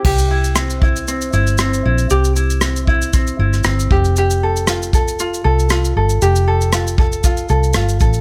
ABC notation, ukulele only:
X:1
M:4/4
L:1/8
Q:"Swing 16ths" 1/4=117
K:C
V:1 name="Ukulele"
G E C E C E C E | G E C E C E C G | G A F A F A F A | G A F A F A F A |]